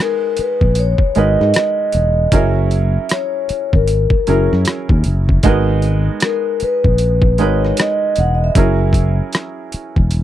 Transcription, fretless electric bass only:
0.39 muted fretless electric bass stroke soft
0.62 0.94 A#1 medium
1.17 1.36 G#1 medium
1.41 1.52 G#2 medium
1.95 2.26 E1 medium
2.33 2.96 F#1 medium
3.50 muted fretless electric bass stroke soft
3.74 4.05 G#1 medium
4.28 4.47 F#1 medium
4.53 4.64 F#2 medium
4.90 5.02 D#2 medium
5.06 5.37 F#1 medium
5.44 6.08 G#1 medium
6.62 muted fretless electric bass stroke soft
6.85 7.41 A#1 medium
7.41 7.72 G#1 medium
8.18 8.49 E1 medium
8.56 9.20 F#1 medium
9.74 muted fretless electric bass stroke soft
9.97 10.23 E1 medium

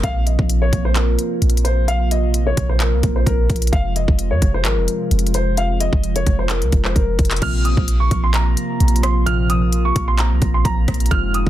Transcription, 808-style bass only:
0.03 0.37 A#1 loud
0.39 0.71 A#1 loud
0.73 1.17 A#1 loud
1.42 2.53 A#1 loud
2.57 2.94 A#1 loud
2.93 3.03 C2 loud
3.03 3.26 A#1 loud
3.27 3.49 A#1 loud
3.50 3.72 A#1 loud
3.73 4.07 F1 loud
4.08 4.33 F1 loud
4.31 4.41 F2 loud
4.42 4.67 F1 loud
4.65 4.79 G#1 loud
4.77 4.88 F1 loud
5.11 5.89 F1 loud
5.93 6.25 F1 loud
6.27 6.63 F1 loud
6.62 6.72 C2 loud
6.73 6.95 F1 loud
6.96 7.18 F1 loud
7.19 7.41 F1 loud
7.42 7.76 A#1 loud
7.77 8.10 A#1 loud
8.11 8.55 A#1 loud
8.80 9.92 A#1 loud
9.96 10.33 A#1 loud
10.31 10.41 C2 loud
10.42 10.64 A#1 loud
10.65 10.87 A#1 loud
10.88 11.10 A#1 loud
11.11 11.45 F1 loud
11.47 11.50 F1 loud

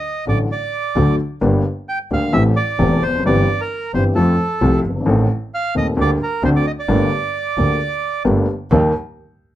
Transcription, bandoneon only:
0.00 0.25 D#5 medium
0.29 0.39 D5 medium
0.52 1.16 D5 medium
1.89 1.99 G5 medium
2.13 2.33 F5 medium
2.33 2.43 E5 medium
2.56 3.03 D5 medium
3.03 3.24 C5 medium
3.26 3.61 D5 medium
3.61 3.92 A#4 medium
3.94 4.04 C5 medium
4.15 4.80 A4 medium
5.54 5.75 F5 medium
5.77 5.87 D#5 medium
6.01 6.10 D5 medium
6.23 6.43 A#4 medium
6.45 6.50 C5 medium
6.56 6.66 D5 medium
6.67 6.72 D#5 medium
6.79 8.23 D5 medium

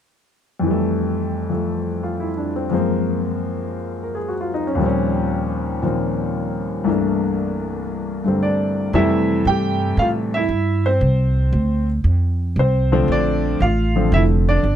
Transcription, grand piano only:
0.60 2.69 F2 soft
0.60 2.71 E3 soft
0.67 2.73 G3 soft
0.67 1.51 A3 medium
1.50 2.69 F3 soft
1.50 2.72 A3 soft
2.03 2.30 F4 soft
2.20 2.52 E4 soft
2.38 2.64 D4 soft
2.56 2.73 C4 soft
2.69 4.78 F#2 soft
2.69 4.78 F3 soft
2.69 4.79 G#3 soft
2.69 4.80 A#3 soft
2.74 4.80 C4 soft
4.03 4.18 A#4 soft
4.15 4.33 G#4 soft
4.28 4.52 F#4 soft
4.41 4.63 F4 soft
4.54 4.70 D#4 soft
4.67 4.84 C#4 soft
4.75 6.85 D#2 medium
4.75 5.81 A#2 soft
4.79 5.82 F3 soft
4.79 6.88 G3 soft
4.83 5.84 C4 soft
4.83 6.90 C#4 medium
5.82 6.86 A#2 soft
5.82 6.87 D#3 soft
5.82 6.87 F3 soft
5.82 6.87 A#3 soft
5.82 6.88 C4 soft
6.84 8.93 C2 soft
6.84 8.23 G2 soft
6.84 8.93 E3 soft
6.84 8.25 A3 soft
6.84 8.95 A#3 soft
6.89 8.44 D4 soft
8.24 8.94 G2 soft
8.24 8.94 D3 soft
8.24 8.93 G3 soft
8.24 8.94 A3 soft
8.24 8.96 C4 soft
8.43 8.92 D4 soft
8.43 8.96 D5 medium
8.94 10.39 C3 medium
8.94 10.40 E3 medium
8.94 10.40 G3 medium
8.94 10.40 A3 medium
8.94 9.44 E4 medium
8.94 9.43 E5 medium
9.47 9.96 G4 medium
9.47 10.00 G5 medium
9.99 10.09 F4 medium
9.99 10.07 F5 medium
10.34 10.83 E4 medium
10.34 10.87 E5 medium
10.86 11.86 C4 medium
10.86 11.85 C5 medium
12.59 12.91 C4 medium
12.59 13.07 C5 medium
12.92 13.58 D3 medium
12.92 13.58 F3 medium
12.92 13.58 A3 medium
12.92 13.58 C4 medium
13.12 13.59 D4 medium
13.12 13.64 D5 medium
13.62 14.11 F4 medium
13.62 14.15 F5 medium
13.95 14.61 D3 medium
13.95 14.61 F3 medium
13.95 14.61 A3 soft
13.95 14.62 C4 medium
14.14 14.23 E4 medium
14.14 14.21 E5 medium
14.49 14.76 D4 medium
14.49 14.76 D5 medium

